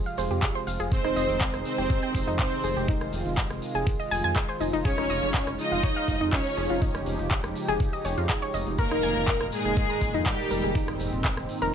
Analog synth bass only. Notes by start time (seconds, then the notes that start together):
0.18 F1
0.31 F2
0.67 F1
0.80 F1
1.04 F1
1.16 F1
1.29 F1
1.54 F1
1.78 F1
2.15 F1
2.27 F2
2.64 F1
2.77 F1
3.01 F1
3.13 F1
3.26 F1
3.50 F1
3.75 F1
4.11 F1
4.24 F2
4.61 F1
4.73 F1
4.98 F1
5.10 F1
5.23 F1
5.47 F1
5.72 F1
6.08 F1
6.21 F2
6.57 F1
6.70 F1
6.95 F1
7.06 F1
7.19 F1
7.44 F1
7.68 F1
8.05 F1
8.18 F2
8.54 F1
8.67 F1
8.91 F1
9.03 F1
9.16 F1
9.41 F1
9.65 F1
10.02 F1
10.14 F2
10.51 F1
10.63 F1
10.88 F1
11.00 F1
11.13 F1
11.37 F1
11.62 F1